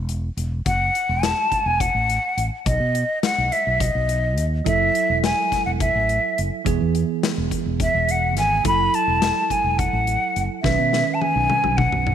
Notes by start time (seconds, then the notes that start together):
Already playing: E1
0.09 closed hi-hat
0.37 E1, closed hi-hat
0.66 F#1 F#5, kick, closed hi-hat
0.95 closed hi-hat
1.09 E1
1.23 A5, snare, closed hi-hat
1.52 kick, closed hi-hat
1.65 E1 G#5
1.80 F#5, kick, closed hi-hat
1.94 A1
2.10 closed hi-hat
2.37 A1, closed hi-hat
2.66 B1 D#5, kick, closed hi-hat
2.80 B2
2.95 closed hi-hat
3.23 F#5, snare, closed hi-hat
3.38 B1
3.52 E5, closed hi-hat
3.67 B1
3.80 D#5, kick, closed hi-hat
3.95 B1
4.09 closed hi-hat
4.38 D#2, closed hi-hat
4.65 F#1 F#3 E4 A4 E5, kick, closed hi-hat
4.95 closed hi-hat
5.09 E1
5.23 G#5, snare, closed hi-hat
5.52 kick, snare, closed hi-hat
5.66 E1 F#5
5.80 E5, kick, closed hi-hat
5.95 A1
6.09 closed hi-hat
6.38 F#1, closed hi-hat
6.65 E1 E3 B3 G#4, kick, closed hi-hat
6.81 E2
6.95 closed hi-hat
7.23 snare, closed hi-hat
7.37 E1
7.51 kick, closed hi-hat
7.66 E1
7.80 E5, kick, closed hi-hat
7.94 E1
8.09 F#5, closed hi-hat
8.37 G#1 G#5, snare, closed hi-hat
8.64 F#1 F#3 E4 A4 B5, kick, closed hi-hat
8.94 A5, closed hi-hat
9.07 E1
9.22 snare, closed hi-hat
9.50 G#5, kick, closed hi-hat
9.64 E1
9.79 F#5, kick, closed hi-hat
9.93 A1
10.07 closed hi-hat
10.36 F#1, closed hi-hat
10.62 B1 D#3 C#4 B4 E5, kick, snare
10.79 B2
10.93 snare
11.14 A5
11.21 G#5, high tom
11.35 B1
11.50 mid tom
11.64 B1, mid tom
11.77 F#5, kick, mid tom
11.92 B1, mid tom
12.07 mid tom